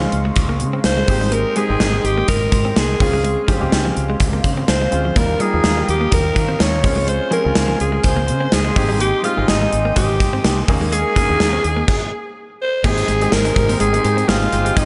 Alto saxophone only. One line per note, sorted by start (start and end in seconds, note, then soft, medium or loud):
0.86 1.34 C5 loud
1.33 1.58 A#4 loud
1.57 2.07 G#4 medium
2.06 2.28 G4 medium
2.29 2.80 A#4 medium
2.78 3.01 G#4 medium
3.01 3.46 G#4 medium
4.69 5.19 C5 medium
5.17 5.43 A#4 medium
5.41 5.89 G#4 loud
5.90 6.11 G4 medium
6.14 6.63 A#4 loud
6.61 7.11 C#5 loud
7.09 7.33 C5 loud
7.33 7.77 A#4 loud
7.81 8.06 G#4 medium
8.05 8.55 C5 loud
8.53 9.00 G#4 medium
9.01 9.23 G4 medium
9.25 9.47 F4 medium
9.49 9.93 D#4 medium
9.97 10.65 G4 medium
10.93 12.33 G#4 loud
12.61 12.87 C5 loud
12.85 13.34 G#4 loud
13.33 13.80 A#4 loud
13.81 14.30 G#4 loud
14.28 14.79 F4 medium
14.77 14.85 D#4 loud